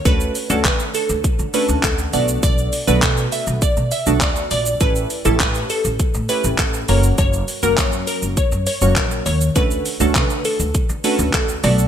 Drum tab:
HH |x-o-x-o-x-o-x-o-|x-o-x-o-x-o-x-o-|x-o-x-o-x-o-x-o-|x-o-x-o-x-o-x-o-|
SH |xxxxxxxxxxxxxxxx|xxxxxxxxxxxxxxxx|xxxxxxxxxxxxxxxx|xxxxxxxxxxxxxxxx|
CP |----x-------x---|----x-------x---|----x-------x---|----x-------x---|
BD |o---o---o---o---|o---o---o---o---|o---o---o---o---|o---o---o---o---|

HH |x-o-x-o-x-o-x-o-|
SH |xxxxxxxxxxxxxxxx|
CP |----x-------x---|
BD |o---o---o---o---|